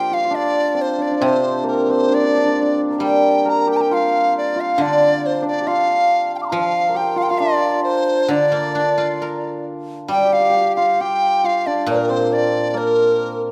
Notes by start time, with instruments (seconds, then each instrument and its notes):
Already playing: guzheng F3, hammered dulcimer A#3 C4 D4 F4 G4, dizi G5
0.11 hammered dulcimer F4, dizi F5
0.25 hammered dulcimer F4
0.31 hammered dulcimer D4
0.35 dizi D5
0.74 hammered dulcimer C4
0.81 dizi C5
0.98 hammered dulcimer D4, dizi D5
1.11 hammered dulcimer D4
1.20 guzheng C3, hammered dulcimer C4, dizi C5
1.63 hammered dulcimer A#3
1.68 dizi A#4
1.88 hammered dulcimer C4, dizi C5
2.09 hammered dulcimer D4
2.14 hammered dulcimer D4, dizi D5
2.24 hammered dulcimer D4
2.32 hammered dulcimer D4
2.37 hammered dulcimer D4
2.45 hammered dulcimer D4
2.50 hammered dulcimer D4
2.61 hammered dulcimer D4
2.91 hammered dulcimer A#4
2.98 guzheng G3, hammered dulcimer G4
3.03 dizi G5
3.45 hammered dulcimer A#4, dizi A#5
3.67 hammered dulcimer G4
3.71 dizi G5
3.77 hammered dulcimer G4, dizi A#5
3.81 dizi G5
3.91 hammered dulcimer F4, dizi F5
4.38 dizi D5
4.56 hammered dulcimer F4
4.60 dizi F5
4.78 guzheng D3, hammered dulcimer D4
4.82 dizi D5
5.26 dizi C5
5.42 hammered dulcimer D4
5.48 dizi D5
5.60 hammered dulcimer G4
5.67 hammered dulcimer F4, dizi F5
6.35 dizi F5 G5
6.42 dizi C6 D6
6.48 hammered dulcimer F4, dizi A#5
6.52 guzheng F3, dizi F5
6.89 hammered dulcimer A#4
6.94 hammered dulcimer G4, dizi G5
7.16 hammered dulcimer F4, dizi F5
7.23 dizi G5
7.30 hammered dulcimer F4, dizi F5
7.39 hammered dulcimer D4, dizi D5
7.84 dizi C5
8.28 guzheng D3, hammered dulcimer D4, dizi D5
8.52 guzheng A#3
8.75 guzheng D4
8.98 guzheng F4
9.22 guzheng A#4
10.08 guzheng G3, hammered dulcimer G4, dizi G5
10.18 hammered dulcimer G4
10.25 hammered dulcimer G4
10.33 hammered dulcimer G4, dizi F5
10.40 hammered dulcimer G4
10.50 hammered dulcimer G4
10.55 hammered dulcimer G4
10.61 hammered dulcimer G4
10.76 hammered dulcimer F4, dizi F5
11.01 hammered dulcimer G4, dizi G5
11.44 hammered dulcimer F4, dizi F5
11.67 hammered dulcimer D4, dizi D5
11.86 guzheng A#2, dizi A#4
11.90 hammered dulcimer A#3
12.09 hammered dulcimer C4, dizi C5
12.33 dizi D5
12.74 hammered dulcimer A#3
12.78 dizi A#4